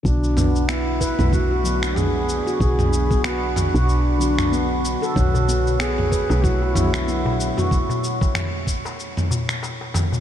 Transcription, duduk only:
X:1
M:4/4
L:1/8
Q:"Swing 16ths" 1/4=94
K:Bdor
V:1 name="Duduk"
D2 E2 F2 G2 | G2 F2 D3 z | F2 G2 F E3 | z8 |]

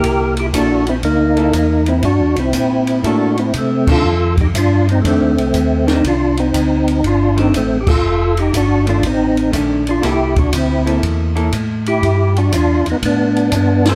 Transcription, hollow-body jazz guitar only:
X:1
M:4/4
L:1/8
Q:"Swing" 1/4=120
K:Cmix
V:1 name="Hollow-body jazz guitar"
[B,E]2 [B,EA] z2 [B,EA] z2 | z4 [B,EA] z2 [_E,A,D] | z4 [_E,A,D] z2 [E,A,D] | z4 z [_E,A,D] z2 |
z3 [_E,A,D] z2 [E,A,D] z | [B,EA] z2 [B,EA]2 [B,EA] z2 | z8 |]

